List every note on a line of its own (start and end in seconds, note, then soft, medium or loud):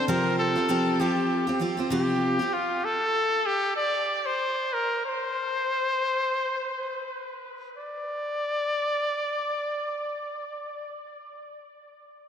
0.08 0.56 C3 medium
0.08 0.56 F3 medium
0.08 0.56 C4 medium
0.08 0.56 F4 medium
0.08 0.54 G4 medium
0.08 0.36 A#4 medium
0.39 1.02 A4 medium
0.56 0.68 C4 soft
0.56 0.69 F4 soft
0.56 0.69 G4 soft
0.69 1.00 C3 medium
0.69 0.98 F3 medium
0.69 0.99 C4 medium
0.69 1.00 F4 medium
0.69 1.00 G4 medium
1.00 1.47 F3 medium
1.00 1.48 C4 medium
1.00 1.47 F4 medium
1.00 1.62 G4 medium
1.00 1.46 G4 medium
1.47 1.60 C4 soft
1.47 1.60 F4 soft
1.47 1.61 G4 soft
1.60 1.77 F3 soft
1.60 1.78 C4 soft
1.60 1.77 F4 soft
1.60 1.76 G4 medium
1.77 1.90 C4 soft
1.77 1.90 F4 soft
1.77 1.91 G4 soft
1.90 2.39 C3 medium
1.90 2.39 F3 medium
1.90 2.40 C4 medium
1.90 2.40 F4 medium
1.90 2.38 G4 medium
1.90 2.55 G4 medium
2.39 2.55 C4 soft
2.39 2.54 F4 soft
2.39 2.53 G4 soft
2.53 2.86 F4 medium
2.84 3.48 A4 medium
3.46 3.76 G4 medium
3.77 4.27 D5 medium
4.26 4.74 C5 medium
4.73 5.05 A#4 medium
5.05 7.38 C5 medium
7.77 10.94 D5 medium